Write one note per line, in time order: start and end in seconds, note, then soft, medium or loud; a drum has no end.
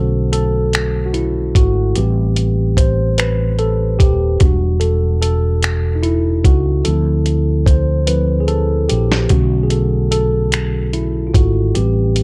0.00 1.52 B1 medium
0.00 1.98 D3 soft
0.00 1.97 A3 soft
0.00 1.97 C#4 medium
0.00 1.06 F#4 medium
0.00 0.31 A4 medium
0.33 1.03 A4 medium
0.33 closed hi-hat medium
0.73 finger snap loud
0.73 closed hi-hat medium
1.06 1.14 F#4 medium
1.14 1.56 E4 medium
1.14 closed hi-hat soft
1.55 1.92 G#1 medium
1.55 1.93 F#4 medium
1.55 kick medium
1.55 closed hi-hat medium
1.96 3.97 A1 loud
1.96 3.14 G3 soft
1.96 3.15 C4 soft
1.96 2.80 G4 medium
1.96 3.14 B4 soft
1.96 closed hi-hat medium
2.36 closed hi-hat medium
2.77 3.19 C5 medium
2.77 kick medium
2.77 closed hi-hat medium
3.18 3.60 B4 medium
3.18 finger snap medium
3.18 closed hi-hat medium
3.59 4.01 A4 medium
3.59 closed hi-hat soft
3.99 4.37 D#1 medium
3.99 4.41 G4 medium
3.99 kick medium
3.99 closed hi-hat medium
4.40 6.41 E1 medium
4.40 5.59 G3 soft
4.40 5.59 D4 soft
4.40 5.59 F#4 medium
4.40 kick medium
4.40 closed hi-hat medium
4.80 5.19 A4 medium
4.80 closed hi-hat medium
5.21 5.99 A4 medium
5.21 closed hi-hat medium
5.63 finger snap medium
5.63 closed hi-hat medium
5.95 6.03 D#4 medium
6.03 6.45 E4 medium
6.03 closed hi-hat soft
6.44 6.82 C#2 medium
6.44 6.87 F#4 medium
6.44 kick medium
6.44 closed hi-hat medium
6.85 8.86 D2 medium
6.85 7.40 F3 soft
6.85 7.40 C4 soft
6.85 7.40 E4 soft
6.85 7.69 A4 medium
6.85 closed hi-hat medium
7.26 closed hi-hat medium
7.66 8.09 C5 medium
7.66 kick medium
7.66 closed hi-hat medium
8.07 8.45 F3 soft
8.07 8.45 C4 soft
8.07 8.45 E4 soft
8.07 8.39 B4 medium
8.07 closed hi-hat medium
8.40 8.48 G#4 medium
8.48 8.90 A4 medium
8.48 closed hi-hat soft
8.89 9.27 A#1 medium
8.89 9.27 G4 medium
8.89 closed hi-hat medium
9.12 snare medium
9.29 11.31 B1 medium
9.29 11.71 D3 soft
9.29 11.72 A3 soft
9.29 11.72 C#4 soft
9.29 9.65 F#4 medium
9.29 kick medium
9.29 closed hi-hat medium
9.63 9.71 G#4 medium
9.70 10.10 A4 medium
9.70 closed hi-hat medium
10.11 10.89 A4 medium
10.11 closed hi-hat medium
10.52 finger snap medium
10.52 closed hi-hat medium
10.93 11.25 E4 medium
10.93 closed hi-hat soft
11.27 11.34 F4 medium
11.34 11.72 G#1 medium
11.34 11.76 F#4 medium
11.34 kick medium
11.34 closed hi-hat medium
11.75 12.23 A1 medium
11.75 12.23 G3 soft
11.75 12.23 C4 medium
11.75 12.23 G4 medium
11.75 12.23 B4 soft
11.75 closed hi-hat medium
12.16 closed hi-hat medium